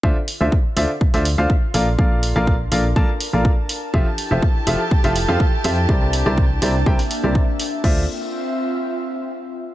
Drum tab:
CC |----------------|----------------|----------------|----------------|
HH |--o---o--oo---o-|--o---o---o---o-|--o---o--oo---o-|--o---o--oo---o-|
BD |o---o---o---o---|o---o---o---o---|o---o---o---o---|o---o---o---o---|

CC |x---------------|
HH |----------------|
BD |o---------------|